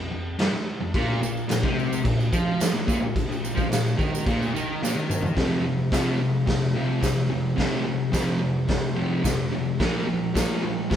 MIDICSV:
0, 0, Header, 1, 4, 480
1, 0, Start_track
1, 0, Tempo, 553506
1, 824, Time_signature, 4, 2, 24, 8
1, 9506, End_track
2, 0, Start_track
2, 0, Title_t, "Distorted electric guitar"
2, 0, Program_c, 0, 30
2, 96, Note_on_c, 0, 41, 67
2, 292, Note_off_c, 0, 41, 0
2, 334, Note_on_c, 0, 43, 108
2, 452, Note_off_c, 0, 43, 0
2, 696, Note_on_c, 0, 41, 77
2, 818, Note_on_c, 0, 46, 107
2, 820, Note_off_c, 0, 41, 0
2, 1045, Note_off_c, 0, 46, 0
2, 1055, Note_on_c, 0, 46, 71
2, 1251, Note_off_c, 0, 46, 0
2, 1286, Note_on_c, 0, 46, 74
2, 1415, Note_off_c, 0, 46, 0
2, 1419, Note_on_c, 0, 48, 99
2, 1763, Note_off_c, 0, 48, 0
2, 1766, Note_on_c, 0, 46, 73
2, 1966, Note_off_c, 0, 46, 0
2, 2017, Note_on_c, 0, 53, 111
2, 2371, Note_off_c, 0, 53, 0
2, 2374, Note_on_c, 0, 46, 73
2, 2478, Note_off_c, 0, 46, 0
2, 2488, Note_on_c, 0, 46, 105
2, 2594, Note_off_c, 0, 46, 0
2, 2604, Note_on_c, 0, 46, 78
2, 2805, Note_off_c, 0, 46, 0
2, 2856, Note_on_c, 0, 46, 74
2, 2964, Note_off_c, 0, 46, 0
2, 2974, Note_on_c, 0, 46, 70
2, 3076, Note_off_c, 0, 46, 0
2, 3079, Note_on_c, 0, 53, 95
2, 3198, Note_off_c, 0, 53, 0
2, 3202, Note_on_c, 0, 46, 79
2, 3404, Note_off_c, 0, 46, 0
2, 3444, Note_on_c, 0, 51, 106
2, 3686, Note_off_c, 0, 51, 0
2, 3695, Note_on_c, 0, 46, 92
2, 3931, Note_off_c, 0, 46, 0
2, 3937, Note_on_c, 0, 51, 98
2, 4172, Note_off_c, 0, 51, 0
2, 4188, Note_on_c, 0, 46, 105
2, 4296, Note_off_c, 0, 46, 0
2, 4299, Note_on_c, 0, 51, 110
2, 4653, Note_off_c, 0, 51, 0
2, 4657, Note_on_c, 0, 41, 89
2, 4659, Note_on_c, 0, 48, 86
2, 4672, Note_on_c, 0, 53, 93
2, 4881, Note_off_c, 0, 41, 0
2, 4882, Note_off_c, 0, 48, 0
2, 4891, Note_on_c, 0, 41, 68
2, 4893, Note_off_c, 0, 53, 0
2, 4893, Note_on_c, 0, 48, 72
2, 5113, Note_off_c, 0, 41, 0
2, 5114, Note_off_c, 0, 48, 0
2, 5132, Note_on_c, 0, 41, 86
2, 5133, Note_on_c, 0, 48, 87
2, 5140, Note_on_c, 0, 53, 89
2, 5363, Note_off_c, 0, 41, 0
2, 5364, Note_off_c, 0, 48, 0
2, 5367, Note_off_c, 0, 53, 0
2, 5375, Note_on_c, 0, 41, 69
2, 5376, Note_on_c, 0, 48, 70
2, 5595, Note_off_c, 0, 41, 0
2, 5595, Note_off_c, 0, 48, 0
2, 5605, Note_on_c, 0, 41, 67
2, 5606, Note_on_c, 0, 48, 82
2, 5830, Note_off_c, 0, 41, 0
2, 5831, Note_off_c, 0, 48, 0
2, 5848, Note_on_c, 0, 41, 88
2, 5856, Note_on_c, 0, 48, 94
2, 5856, Note_on_c, 0, 53, 94
2, 6070, Note_off_c, 0, 41, 0
2, 6075, Note_off_c, 0, 48, 0
2, 6081, Note_on_c, 0, 41, 72
2, 6086, Note_off_c, 0, 53, 0
2, 6086, Note_on_c, 0, 48, 76
2, 6309, Note_off_c, 0, 41, 0
2, 6311, Note_off_c, 0, 48, 0
2, 6328, Note_on_c, 0, 41, 78
2, 6330, Note_on_c, 0, 48, 74
2, 6546, Note_off_c, 0, 41, 0
2, 6553, Note_off_c, 0, 48, 0
2, 6557, Note_on_c, 0, 41, 81
2, 6564, Note_on_c, 0, 48, 92
2, 6571, Note_on_c, 0, 53, 91
2, 6794, Note_off_c, 0, 41, 0
2, 6800, Note_off_c, 0, 48, 0
2, 6804, Note_off_c, 0, 53, 0
2, 6804, Note_on_c, 0, 41, 62
2, 6810, Note_on_c, 0, 48, 69
2, 7031, Note_off_c, 0, 41, 0
2, 7034, Note_off_c, 0, 48, 0
2, 7041, Note_on_c, 0, 41, 87
2, 7052, Note_on_c, 0, 48, 93
2, 7056, Note_on_c, 0, 53, 102
2, 7270, Note_off_c, 0, 41, 0
2, 7276, Note_off_c, 0, 48, 0
2, 7281, Note_on_c, 0, 41, 64
2, 7286, Note_on_c, 0, 48, 80
2, 7287, Note_off_c, 0, 53, 0
2, 7510, Note_off_c, 0, 41, 0
2, 7512, Note_off_c, 0, 48, 0
2, 7526, Note_on_c, 0, 41, 72
2, 7530, Note_on_c, 0, 48, 82
2, 7752, Note_off_c, 0, 41, 0
2, 7755, Note_off_c, 0, 48, 0
2, 7767, Note_on_c, 0, 41, 77
2, 7772, Note_on_c, 0, 48, 93
2, 7777, Note_on_c, 0, 53, 98
2, 7992, Note_off_c, 0, 41, 0
2, 8000, Note_off_c, 0, 48, 0
2, 8002, Note_on_c, 0, 41, 70
2, 8008, Note_off_c, 0, 53, 0
2, 8010, Note_on_c, 0, 48, 85
2, 8231, Note_off_c, 0, 41, 0
2, 8235, Note_off_c, 0, 48, 0
2, 8254, Note_on_c, 0, 41, 76
2, 8260, Note_on_c, 0, 48, 81
2, 8477, Note_off_c, 0, 41, 0
2, 8480, Note_off_c, 0, 48, 0
2, 8495, Note_on_c, 0, 46, 80
2, 8501, Note_on_c, 0, 53, 89
2, 8505, Note_on_c, 0, 58, 100
2, 8723, Note_off_c, 0, 46, 0
2, 8727, Note_off_c, 0, 53, 0
2, 8732, Note_off_c, 0, 58, 0
2, 8734, Note_on_c, 0, 46, 63
2, 8738, Note_on_c, 0, 53, 72
2, 8957, Note_off_c, 0, 46, 0
2, 8959, Note_off_c, 0, 53, 0
2, 8972, Note_on_c, 0, 46, 88
2, 8977, Note_on_c, 0, 53, 100
2, 8983, Note_on_c, 0, 58, 93
2, 9206, Note_off_c, 0, 46, 0
2, 9208, Note_off_c, 0, 53, 0
2, 9211, Note_off_c, 0, 58, 0
2, 9217, Note_on_c, 0, 46, 65
2, 9225, Note_on_c, 0, 53, 76
2, 9439, Note_off_c, 0, 46, 0
2, 9442, Note_off_c, 0, 53, 0
2, 9453, Note_on_c, 0, 46, 76
2, 9455, Note_on_c, 0, 53, 84
2, 9506, Note_off_c, 0, 46, 0
2, 9506, Note_off_c, 0, 53, 0
2, 9506, End_track
3, 0, Start_track
3, 0, Title_t, "Muted distorted electric guitar strokes"
3, 463, Note_on_c, 9, 29, 62
3, 550, Note_off_c, 9, 29, 0
3, 9506, End_track
4, 0, Start_track
4, 0, Title_t, "Drums"
4, 338, Note_on_c, 9, 49, 71
4, 348, Note_on_c, 9, 38, 116
4, 424, Note_off_c, 9, 49, 0
4, 435, Note_off_c, 9, 38, 0
4, 818, Note_on_c, 9, 36, 110
4, 820, Note_on_c, 9, 49, 65
4, 904, Note_off_c, 9, 36, 0
4, 907, Note_off_c, 9, 49, 0
4, 1067, Note_on_c, 9, 54, 83
4, 1154, Note_off_c, 9, 54, 0
4, 1189, Note_on_c, 9, 54, 26
4, 1276, Note_off_c, 9, 54, 0
4, 1292, Note_on_c, 9, 49, 65
4, 1302, Note_on_c, 9, 38, 109
4, 1311, Note_on_c, 9, 54, 99
4, 1379, Note_off_c, 9, 49, 0
4, 1389, Note_off_c, 9, 38, 0
4, 1397, Note_off_c, 9, 54, 0
4, 1417, Note_on_c, 9, 36, 110
4, 1504, Note_off_c, 9, 36, 0
4, 1556, Note_on_c, 9, 54, 29
4, 1643, Note_off_c, 9, 54, 0
4, 1670, Note_on_c, 9, 54, 80
4, 1757, Note_off_c, 9, 54, 0
4, 1778, Note_on_c, 9, 36, 105
4, 1779, Note_on_c, 9, 49, 63
4, 1784, Note_on_c, 9, 54, 31
4, 1865, Note_off_c, 9, 36, 0
4, 1866, Note_off_c, 9, 49, 0
4, 1871, Note_off_c, 9, 54, 0
4, 1910, Note_on_c, 9, 54, 30
4, 1997, Note_off_c, 9, 54, 0
4, 2017, Note_on_c, 9, 36, 105
4, 2023, Note_on_c, 9, 54, 73
4, 2104, Note_off_c, 9, 36, 0
4, 2110, Note_off_c, 9, 54, 0
4, 2257, Note_on_c, 9, 49, 62
4, 2263, Note_on_c, 9, 54, 112
4, 2267, Note_on_c, 9, 38, 118
4, 2343, Note_off_c, 9, 49, 0
4, 2350, Note_off_c, 9, 54, 0
4, 2354, Note_off_c, 9, 38, 0
4, 2399, Note_on_c, 9, 54, 28
4, 2485, Note_off_c, 9, 54, 0
4, 2498, Note_on_c, 9, 36, 112
4, 2508, Note_on_c, 9, 54, 74
4, 2585, Note_off_c, 9, 36, 0
4, 2594, Note_off_c, 9, 54, 0
4, 2739, Note_on_c, 9, 36, 109
4, 2739, Note_on_c, 9, 49, 59
4, 2761, Note_on_c, 9, 54, 32
4, 2826, Note_off_c, 9, 36, 0
4, 2826, Note_off_c, 9, 49, 0
4, 2847, Note_off_c, 9, 54, 0
4, 2879, Note_on_c, 9, 54, 29
4, 2966, Note_off_c, 9, 54, 0
4, 2988, Note_on_c, 9, 54, 77
4, 3075, Note_off_c, 9, 54, 0
4, 3100, Note_on_c, 9, 36, 105
4, 3105, Note_on_c, 9, 54, 27
4, 3187, Note_off_c, 9, 36, 0
4, 3191, Note_off_c, 9, 54, 0
4, 3222, Note_on_c, 9, 49, 59
4, 3233, Note_on_c, 9, 38, 103
4, 3233, Note_on_c, 9, 54, 93
4, 3309, Note_off_c, 9, 49, 0
4, 3320, Note_off_c, 9, 38, 0
4, 3320, Note_off_c, 9, 54, 0
4, 3350, Note_on_c, 9, 54, 33
4, 3437, Note_off_c, 9, 54, 0
4, 3460, Note_on_c, 9, 36, 109
4, 3476, Note_on_c, 9, 54, 29
4, 3546, Note_off_c, 9, 36, 0
4, 3563, Note_off_c, 9, 54, 0
4, 3597, Note_on_c, 9, 54, 89
4, 3684, Note_off_c, 9, 54, 0
4, 3698, Note_on_c, 9, 36, 116
4, 3698, Note_on_c, 9, 49, 64
4, 3715, Note_on_c, 9, 54, 30
4, 3785, Note_off_c, 9, 36, 0
4, 3785, Note_off_c, 9, 49, 0
4, 3802, Note_off_c, 9, 54, 0
4, 3836, Note_on_c, 9, 54, 28
4, 3923, Note_off_c, 9, 54, 0
4, 3957, Note_on_c, 9, 54, 75
4, 4043, Note_off_c, 9, 54, 0
4, 4183, Note_on_c, 9, 38, 68
4, 4203, Note_on_c, 9, 54, 111
4, 4270, Note_off_c, 9, 38, 0
4, 4290, Note_off_c, 9, 54, 0
4, 4326, Note_on_c, 9, 54, 29
4, 4413, Note_off_c, 9, 54, 0
4, 4420, Note_on_c, 9, 45, 96
4, 4430, Note_on_c, 9, 54, 88
4, 4507, Note_off_c, 9, 45, 0
4, 4516, Note_off_c, 9, 54, 0
4, 4531, Note_on_c, 9, 43, 98
4, 4563, Note_on_c, 9, 54, 31
4, 4617, Note_off_c, 9, 43, 0
4, 4650, Note_off_c, 9, 54, 0
4, 4653, Note_on_c, 9, 46, 57
4, 4654, Note_on_c, 9, 36, 100
4, 4663, Note_on_c, 9, 38, 111
4, 4740, Note_off_c, 9, 46, 0
4, 4741, Note_off_c, 9, 36, 0
4, 4750, Note_off_c, 9, 38, 0
4, 5131, Note_on_c, 9, 46, 60
4, 5134, Note_on_c, 9, 36, 109
4, 5141, Note_on_c, 9, 38, 113
4, 5152, Note_on_c, 9, 54, 79
4, 5218, Note_off_c, 9, 46, 0
4, 5220, Note_off_c, 9, 36, 0
4, 5228, Note_off_c, 9, 38, 0
4, 5239, Note_off_c, 9, 54, 0
4, 5614, Note_on_c, 9, 36, 105
4, 5614, Note_on_c, 9, 46, 60
4, 5625, Note_on_c, 9, 38, 113
4, 5701, Note_off_c, 9, 36, 0
4, 5701, Note_off_c, 9, 46, 0
4, 5711, Note_off_c, 9, 38, 0
4, 6092, Note_on_c, 9, 46, 60
4, 6094, Note_on_c, 9, 36, 104
4, 6100, Note_on_c, 9, 54, 90
4, 6102, Note_on_c, 9, 38, 111
4, 6179, Note_off_c, 9, 46, 0
4, 6181, Note_off_c, 9, 36, 0
4, 6187, Note_off_c, 9, 54, 0
4, 6189, Note_off_c, 9, 38, 0
4, 6573, Note_on_c, 9, 36, 94
4, 6575, Note_on_c, 9, 46, 50
4, 6585, Note_on_c, 9, 38, 107
4, 6660, Note_off_c, 9, 36, 0
4, 6662, Note_off_c, 9, 46, 0
4, 6672, Note_off_c, 9, 38, 0
4, 7046, Note_on_c, 9, 46, 54
4, 7052, Note_on_c, 9, 36, 105
4, 7057, Note_on_c, 9, 38, 116
4, 7061, Note_on_c, 9, 54, 83
4, 7133, Note_off_c, 9, 46, 0
4, 7139, Note_off_c, 9, 36, 0
4, 7143, Note_off_c, 9, 38, 0
4, 7148, Note_off_c, 9, 54, 0
4, 7529, Note_on_c, 9, 46, 54
4, 7534, Note_on_c, 9, 36, 114
4, 7539, Note_on_c, 9, 38, 111
4, 7615, Note_off_c, 9, 46, 0
4, 7621, Note_off_c, 9, 36, 0
4, 7626, Note_off_c, 9, 38, 0
4, 8017, Note_on_c, 9, 36, 111
4, 8018, Note_on_c, 9, 46, 59
4, 8023, Note_on_c, 9, 54, 104
4, 8028, Note_on_c, 9, 38, 106
4, 8103, Note_off_c, 9, 36, 0
4, 8104, Note_off_c, 9, 46, 0
4, 8109, Note_off_c, 9, 54, 0
4, 8115, Note_off_c, 9, 38, 0
4, 8495, Note_on_c, 9, 46, 55
4, 8499, Note_on_c, 9, 36, 104
4, 8506, Note_on_c, 9, 38, 104
4, 8582, Note_off_c, 9, 46, 0
4, 8586, Note_off_c, 9, 36, 0
4, 8592, Note_off_c, 9, 38, 0
4, 8978, Note_on_c, 9, 46, 59
4, 8980, Note_on_c, 9, 36, 103
4, 8988, Note_on_c, 9, 38, 117
4, 8989, Note_on_c, 9, 54, 83
4, 9064, Note_off_c, 9, 46, 0
4, 9066, Note_off_c, 9, 36, 0
4, 9075, Note_off_c, 9, 38, 0
4, 9076, Note_off_c, 9, 54, 0
4, 9462, Note_on_c, 9, 36, 111
4, 9462, Note_on_c, 9, 46, 62
4, 9473, Note_on_c, 9, 38, 104
4, 9506, Note_off_c, 9, 36, 0
4, 9506, Note_off_c, 9, 38, 0
4, 9506, Note_off_c, 9, 46, 0
4, 9506, End_track
0, 0, End_of_file